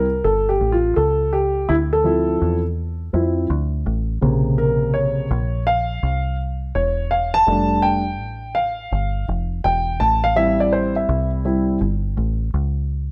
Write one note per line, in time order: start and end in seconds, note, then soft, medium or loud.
0.00 0.21 C2 medium
0.00 0.26 A#4 medium
0.24 0.59 G1 medium
0.24 0.49 A4 medium
0.49 0.74 G4 medium
0.61 0.95 A1 medium
0.72 0.95 F4 medium
0.96 1.66 C#2 medium
0.96 1.34 A4 medium
1.33 1.70 G4 medium
1.69 2.38 D2 loud
1.69 1.74 E4 medium
1.93 2.61 A4 medium
2.04 2.57 F3 medium
2.04 2.57 C4 soft
2.04 2.58 E4 medium
2.42 3.10 E2 medium
3.13 3.48 F2 medium
3.13 3.46 F3 soft
3.13 3.46 C4 soft
3.13 3.47 E4 medium
3.50 3.84 D2 loud
3.86 4.21 A1 medium
4.21 5.27 A#1 loud
4.21 5.27 C3 medium
4.21 5.26 C#3 soft
4.21 5.27 A#3 soft
4.58 4.95 A#4 medium
4.94 5.62 C#5 medium
5.31 5.99 A#1 medium
5.67 6.35 F5 medium
6.03 6.72 C2 medium
6.75 7.44 E1 medium
6.75 7.12 C#5 medium
7.11 7.35 F5 medium
7.34 7.85 A5 loud
7.47 8.20 F1 loud
7.47 7.99 G3 medium
7.47 8.00 A3 medium
7.47 8.00 D4 medium
7.82 8.58 G5 loud
8.20 8.89 A1 loud
8.55 9.24 F5 medium
8.92 9.26 G1 medium
9.28 9.63 F1 medium
9.64 9.99 E1 medium
9.64 10.02 G5 medium
10.00 11.05 A1 loud
10.00 10.24 A5 medium
10.24 10.36 F5 loud
10.36 11.43 G3 medium
10.36 11.44 C4 medium
10.36 11.44 E4 medium
10.36 10.58 E5 loud
10.60 10.72 D5 medium
10.73 10.95 C5 medium
10.96 11.30 E5 medium
11.09 11.78 C2 loud
11.45 11.78 G3 soft
11.45 11.78 C4 soft
11.45 11.78 E4 medium
11.81 12.16 G1 medium
12.17 12.52 A1 loud
12.54 13.12 C#2 medium